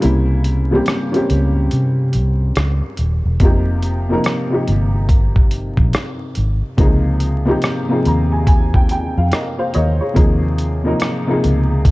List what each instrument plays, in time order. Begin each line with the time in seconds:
0.00 fingered electric bass C2, upright piano C#3 G3 A#3 C4 E4, closed hi-hat
0.44 closed hi-hat
0.71 upright piano C#3 G3 A#3 C4 G4
0.86 cross-stick, closed hi-hat
1.12 upright piano G3 A#3 C4 C#4 G4, closed hi-hat
1.30 fingered electric bass C#2, closed hi-hat
1.71 fingered electric bass C3, closed hi-hat
2.13 fingered electric bass C2, closed hi-hat
2.55 fingered electric bass C#2, cross-stick, closed hi-hat
2.97 fingered electric bass D#1, closed hi-hat
3.25 fingered electric bass E1
3.40 fingered electric bass F1, upright piano C3 F3 A#3, kick, closed hi-hat
3.44 upright piano D#4 G4
3.82 closed hi-hat
4.09 upright piano C3 F3 A#3 D#4
4.13 upright piano A#4
4.24 cross-stick, closed hi-hat
4.50 upright piano C3 F3 A#3 D#4 G4
4.68 fingered electric bass G1, closed hi-hat
5.09 kick, closed hi-hat
5.36 kick
5.51 closed hi-hat
5.77 fingered electric bass A#1, kick
5.93 cross-stick, closed hi-hat
6.35 fingered electric bass G#1, closed hi-hat
6.77 fingered electric bass C#2, upright piano C3 F3 A#3 D#4, kick, closed hi-hat
6.81 upright piano G#4
7.20 closed hi-hat
7.45 upright piano C3 F3 A#3 D#4 G4
7.62 cross-stick, closed hi-hat
7.89 upright piano C3 F3 A#3 D#4 G#4
8.05 fingered electric bass D#2, upright piano A#5, closed hi-hat
8.32 upright piano G#5
8.47 upright piano G#5, kick, closed hi-hat
8.74 upright piano G5, kick
8.89 upright piano G5, closed hi-hat
9.18 fingered electric bass F2, upright piano F5
9.32 upright piano A#4 D#5, cross-stick, closed hi-hat
9.59 upright piano C5 F5
9.74 fingered electric bass D#2, upright piano A#4 C#5 D#5, closed hi-hat
10.01 upright piano G#4 C#5
10.14 fingered electric bass D#2, upright piano C3 F3 A#3 D#4 G#4, kick, closed hi-hat
10.58 closed hi-hat
10.84 upright piano C3 F3 A#3 D#4 A#4
11.00 cross-stick, closed hi-hat
11.27 upright piano C3 F3 A#3 D#4 G#4
11.44 fingered electric bass C#2, closed hi-hat
11.85 kick, closed hi-hat